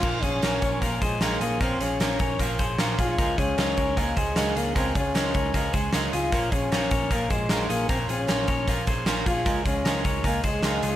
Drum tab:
CC |x-------|--------|--------|--------|
HH |-xxxxxxx|xxxxxxxx|xxxxxxxx|xxxxxxxx|
SD |--o---o-|--o---o-|--o---o-|--o---o-|
BD |oo-ooo--|o--ooo-o|oo-ooo--|oo-ooo--|

CC |--------|--------|--------|
HH |xxxxxxxx|xxxxxxxx|xxxxxxxx|
SD |--o---o-|--o---o-|--o---o-|
BD |oo-ooo--|o--ooo-o|oo-ooo--|